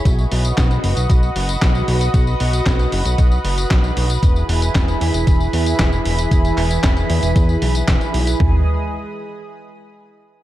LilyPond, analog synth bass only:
\new Staff \with { instrumentName = "Analog synth bass" } { \clef bass \time 4/4 \key gis \minor \tempo 4 = 115 b,,8 b,,8 b,,8 fis,,16 b,,16 b,,8 fis,,8 b,,8 b,,8 | b,,8 b,,8 b,,8 fis,,16 b,,16 b,,8 fis,,8 b,,8 b,,8 | e,,8 e,,8 e,,8 e,16 e,,16 e,,8 e,8 e,,8 e,,8 | e,,8 e,,8 e,,8 e,16 e,,16 e,8 b,,8 e,,16 r16 b,,8 |
gis,,8 r2. r8 | }